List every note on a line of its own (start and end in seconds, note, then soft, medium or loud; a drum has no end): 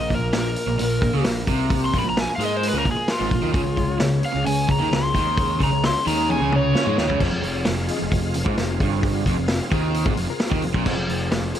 0.00 0.34 A#2 medium
0.00 0.12 A#2 medium
0.00 0.33 F3 medium
0.00 0.15 A#3 medium
0.00 0.34 A#3 medium
0.00 3.52 A#3 medium
0.00 0.15 F4 medium
0.00 0.34 F4 medium
0.00 3.52 F4 medium
0.00 0.16 A#4 medium
0.00 0.36 A#4 medium
0.00 3.52 A#4 medium
0.00 0.12 D#5 loud
0.10 0.32 A#1 medium
0.10 0.30 A#2 medium
0.10 kick medium
0.10 open hi-hat medium
0.15 0.35 A#4 medium
0.22 0.68 A#3 medium
0.22 0.69 F4 medium
0.22 0.69 A#4 medium
0.33 0.55 A#1 medium
0.33 0.53 A#2 medium
0.33 0.80 F3 medium
0.33 0.80 A#3 medium
0.33 snare loud
0.33 open hi-hat medium
0.37 0.81 A#4 medium
0.37 1.26 A#4 loud
0.56 open hi-hat medium
0.67 0.78 A#1 medium
0.67 0.80 A#2 medium
0.79 1.01 A#1 medium
0.79 1.26 A#2 medium
0.79 0.99 A#2 medium
0.79 1.23 F3 medium
0.79 1.53 A#3 medium
0.79 1.24 A#3 medium
0.79 1.53 F4 medium
0.79 1.25 F4 medium
0.79 1.54 A#4 medium
0.79 1.26 A#4 medium
0.79 open hi-hat medium
1.02 1.12 A#1 medium
1.02 1.15 A#2 medium
1.02 kick medium
1.02 open hi-hat medium
1.13 1.24 C#2 medium
1.13 1.25 C#3 loud
1.24 1.47 A#1 medium
1.24 1.45 A#2 medium
1.24 1.69 F3 medium
1.24 1.70 A#3 medium
1.24 1.71 F4 medium
1.24 1.71 A#4 medium
1.24 snare loud
1.24 open hi-hat medium
1.47 1.91 C2 medium
1.47 1.94 C3 medium
1.47 kick medium
1.47 open hi-hat medium
1.70 2.17 A#2 medium
1.70 2.15 F3 medium
1.70 1.99 A#3 medium
1.70 2.16 A#3 medium
1.70 2.17 F4 medium
1.70 1.99 F4 medium
1.70 1.99 A#4 medium
1.70 2.18 A#4 medium
1.70 kick loud
1.70 open hi-hat medium
1.85 1.95 C6 medium
1.93 2.04 A#1 medium
1.93 2.06 A#2 loud
1.93 kick medium
1.93 open hi-hat medium
1.99 2.08 B5 medium
2.04 2.26 A#1 medium
2.04 2.25 A#2 medium
2.04 2.51 A#3 medium
2.04 2.51 F4 medium
2.04 2.52 A#4 medium
2.10 2.19 A#5 medium
2.17 2.40 A#3 medium
2.17 2.40 F4 medium
2.17 2.30 G#5 loud
2.17 snare loud
2.17 open hi-hat medium
2.36 2.71 G#2 medium
2.36 2.63 A#4 soft
2.36 2.44 F5 medium
2.40 2.74 G#3 loud
2.40 2.64 A#3 soft
2.40 2.64 F4 soft
2.40 open hi-hat medium
2.45 2.54 D#5 loud
2.57 2.65 C5 loud
2.63 3.09 A#2 medium
2.63 3.08 F3 medium
2.63 3.36 A#3 medium
2.63 3.09 A#3 medium
2.63 3.37 F4 medium
2.63 3.10 F4 medium
2.63 3.37 A#4 medium
2.63 3.10 A#4 medium
2.63 open hi-hat medium
2.69 2.77 B4 loud
2.73 2.85 C#2 medium
2.73 2.85 C#3 loud
2.79 2.88 A#4 medium
2.85 2.96 A#1 medium
2.85 2.95 A#2 medium
2.85 kick medium
2.85 open hi-hat medium
2.91 3.11 G#4 loud
2.96 muted overdriven electric guitar stroke medium
2.96 muted picked electric bass stroke soft
3.08 3.32 F3 medium
3.08 3.33 A#3 medium
3.08 3.99 F4 loud
3.08 3.33 F4 medium
3.08 snare loud
3.08 open hi-hat medium
3.20 3.30 G#1 medium
3.20 3.31 G#2 loud
3.31 3.42 A#1 medium
3.31 3.41 A#2 medium
3.31 3.55 A#4 soft
3.31 kick medium
3.31 open hi-hat medium
3.36 3.54 A#3 soft
3.42 3.53 D#2 medium
3.42 3.53 D#3 loud
3.53 3.65 C#2 loud
3.53 3.99 C#3 medium
3.53 3.65 C#3 loud
3.53 4.00 G#3 medium
3.53 4.01 C#4 medium
3.53 3.82 C#4 medium
3.53 3.83 G#4 medium
3.53 4.02 G#4 medium
3.53 3.83 C#5 medium
3.53 kick loud
3.53 open hi-hat medium
3.59 7.21 C#4 medium
3.59 7.20 G#4 medium
3.59 7.20 C#5 medium
3.66 3.77 C#2 medium
3.66 3.76 C#3 medium
3.77 3.99 C#2 medium
3.77 3.96 C#3 medium
3.77 kick medium
3.77 open hi-hat medium
3.88 4.35 C#4 medium
3.88 4.35 G#4 medium
3.88 4.36 C#5 medium
4.00 4.22 C#2 medium
4.00 4.23 C#3 medium
4.00 4.19 C#3 medium
4.00 4.24 G#3 medium
4.00 4.23 C#4 medium
4.00 4.21 G#4 medium
4.00 snare loud
4.00 open hi-hat medium
4.22 4.45 C#4 soft
4.22 4.46 G#4 medium
4.22 4.46 F5 loud
4.22 open hi-hat medium
4.26 4.45 G#3 soft
4.35 4.46 C#2 medium
4.35 4.46 C#3 medium
4.45 4.68 C#2 medium
4.45 4.91 C#3 medium
4.45 4.65 C#3 medium
4.45 4.93 G#3 medium
4.45 5.20 C#4 medium
4.45 4.92 C#4 medium
4.45 5.20 G#4 medium
4.45 4.95 G#4 medium
4.45 5.21 C#5 medium
4.45 4.69 G#5 medium
4.45 open hi-hat medium
4.69 4.79 C#2 medium
4.69 4.81 C#3 medium
4.69 4.93 A#5 loud
4.69 kick medium
4.69 open hi-hat medium
4.80 4.91 D#2 loud
4.80 4.92 D#3 loud
4.92 5.13 C#2 medium
4.92 5.15 C#3 medium
4.92 5.11 C#3 medium
4.92 5.16 G#3 medium
4.92 5.14 C#4 medium
4.92 5.12 G#4 medium
4.92 snare loud
4.92 open hi-hat medium
4.97 5.61 C6 loud
5.13 5.58 D#2 medium
5.13 5.60 D#3 loud
5.13 5.38 G#3 soft
5.13 5.38 C#4 medium
5.13 5.37 G#4 medium
5.13 kick medium
5.13 open hi-hat medium
5.37 5.82 C#3 medium
5.37 5.83 G#3 medium
5.37 5.65 C#4 medium
5.37 5.84 C#4 medium
5.37 5.66 G#4 medium
5.37 5.85 G#4 medium
5.37 5.67 A#4 medium
5.37 kick loud
5.37 open hi-hat medium
5.60 5.71 C#2 medium
5.60 5.70 C#3 loud
5.60 5.85 A#5 loud
5.60 kick medium
5.60 open hi-hat medium
5.71 5.94 C#2 medium
5.71 5.90 C#3 medium
5.71 6.18 C#4 medium
5.71 6.18 G#4 medium
5.71 6.19 C#5 medium
5.83 6.07 C#3 medium
5.83 6.07 G#3 medium
5.83 6.07 C#4 medium
5.83 6.05 G#4 medium
5.83 6.07 C6 loud
5.83 snare loud
5.83 open hi-hat medium
6.06 6.39 D#2 medium
6.06 6.41 D#3 loud
6.06 6.30 G#3 soft
6.06 6.31 C#4 medium
6.06 6.29 G#4 medium
6.06 6.30 A#5 loud
6.06 open hi-hat medium
6.28 6.72 C#3 medium
6.28 6.73 G#3 medium
6.28 7.02 C#4 medium
6.28 6.74 C#4 medium
6.28 7.03 G#4 medium
6.28 7.03 C#5 medium
6.28 6.53 G#5 medium
6.28 high tom medium
6.32 6.75 G#4 medium
6.41 6.73 C#2 medium
6.41 6.75 C#3 loud
6.52 7.21 C#5 loud
6.52 mid tom medium
6.73 7.20 C#3 medium
6.73 6.86 C#3 loud
6.73 7.21 G#3 medium
6.73 6.85 C#4 loud
6.73 7.22 G#4 medium
6.73 snare medium
6.85 6.98 G#2 loud
6.85 6.97 G#3 loud
6.85 mid tom medium
6.94 7.07 D#3 loud
6.94 7.13 B3 medium
6.94 7.14 C4 medium
6.98 7.09 D#2 medium
6.98 7.16 D4 medium
6.98 7.17 E4 medium
6.98 snare medium
7.05 7.20 C#3 loud
7.05 7.19 F4 medium
7.05 7.20 G4 medium
7.09 7.20 C#2 medium
7.09 7.21 A4 medium
7.09 7.23 B4 medium
7.09 floor tom medium
7.16 7.31 F2 loud
7.16 7.24 C5 medium
7.16 7.26 D5 medium
7.20 7.32 F1 loud
7.20 10.85 C4 medium
7.20 7.76 F4 medium
7.20 7.76 G#4 medium
7.20 7.77 C5 medium
7.20 7.26 E5 medium
7.20 kick loud
7.20 crash loud
7.24 10.85 F4 medium
7.24 10.86 G#4 medium
7.24 10.85 F5 medium
7.32 7.44 F1 medium
7.32 7.42 F2 medium
7.43 7.66 F1 medium
7.43 7.62 F2 medium
7.43 open hi-hat medium
7.65 7.89 F1 medium
7.65 7.85 F2 medium
7.65 snare loud
7.65 open hi-hat medium
7.88 8.35 F4 medium
7.88 8.36 G#4 medium
7.88 8.36 D#5 medium
7.88 open hi-hat medium
8.00 8.11 F1 medium
8.00 8.11 F2 medium
8.12 8.34 F1 medium
8.12 8.31 F2 medium
8.12 kick medium
8.12 open hi-hat medium
8.34 8.45 F1 medium
8.34 8.46 F2 medium
8.34 open hi-hat medium
8.45 8.57 G#1 medium
8.45 8.57 G#2 medium
8.45 8.92 F4 medium
8.45 8.93 G#4 medium
8.45 8.93 C5 loud
8.45 kick loud
8.58 8.80 F1 medium
8.58 8.80 F2 medium
8.58 snare loud
8.58 open hi-hat medium
8.80 9.24 G1 medium
8.80 9.26 G2 loud
8.80 kick loud
8.80 open hi-hat medium
9.01 9.58 F4 medium
9.01 9.58 G#4 medium
9.01 9.59 C5 medium
9.01 kick loud
9.01 open hi-hat medium
9.26 9.38 F1 medium
9.26 9.37 F2 loud
9.26 kick medium
9.26 open hi-hat medium
9.38 9.60 F1 medium
9.38 9.57 F2 medium
9.48 snare loud
9.48 open hi-hat medium
9.71 10.04 D#2 medium
9.71 10.06 D#3 loud
9.71 10.18 F4 medium
9.71 10.18 G#4 medium
9.71 10.18 C5 medium
9.71 kick loud
9.71 open hi-hat medium
9.94 open hi-hat medium
10.06 10.17 G#1 medium
10.06 10.18 G#2 loud
10.06 kick loud
10.17 10.29 F1 medium
10.17 10.29 F2 medium
10.17 open hi-hat medium
10.29 10.75 F4 medium
10.29 10.76 G#4 medium
10.29 10.76 A#4 loud
10.29 muted picked electric bass stroke soft
10.29 muted overdriven electric guitar stroke medium
10.40 snare loud
10.40 open hi-hat medium
10.51 10.63 D#2 loud
10.51 10.63 D#3 loud
10.51 kick loud
10.62 10.73 F1 medium
10.62 10.75 F2 medium
10.62 open hi-hat medium
10.74 10.86 A#1 loud
10.74 10.87 A#2 loud
10.74 kick loud
10.86 10.97 F1 loud
10.86 10.96 F2 loud
10.86 11.60 C4 medium
10.86 11.42 F4 medium
10.86 11.60 F4 medium
10.86 11.42 G#4 medium
10.86 11.60 G#4 medium
10.86 11.43 C5 medium
10.86 kick medium
10.86 crash loud
10.97 11.09 F1 medium
10.97 11.08 F2 medium
11.09 11.31 F1 medium
11.09 11.28 F2 medium
11.09 open hi-hat medium
11.31 11.53 F1 medium
11.31 11.51 F2 medium
11.31 snare loud
11.31 open hi-hat medium
11.54 11.60 F4 medium
11.54 11.60 G#4 medium
11.54 11.60 A#4 medium
11.54 open hi-hat medium